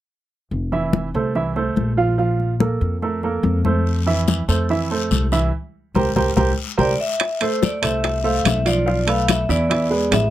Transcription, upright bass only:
0.51 F1
1.14 C2
1.76 A#1
2.81 F2
3.43 F2
4.48 F2
5.11 C2
5.95 C2
6.16 C2
6.36 C2
6.78 C2
7.83 C2
8.45 B1
9.49 E2
10.11 A1

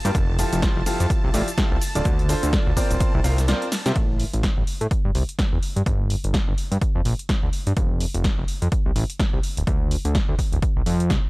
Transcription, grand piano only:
0.05 A#3 F4 G4 A#4
0.39 F3 E4 F4 G4 A4
0.62 F3 E4 F4 G4 C5
0.86 F3 E4 F4 G4 A4
1.34 F3 E4 F4 G4 D5
1.58 E4 F4 G4 A4
1.95 D3 D4 F4 A4 D5
2.29 D3 D4 F4 A4 C5
2.53 D3 D4 F4 A4 D5
2.77 C4 F4 A#4 C5 D5
3.24 C4 F4 A#4 C5 F5
3.48 C4 F4 A#4 C5 D5
3.86 F4 A#4 C5 E5

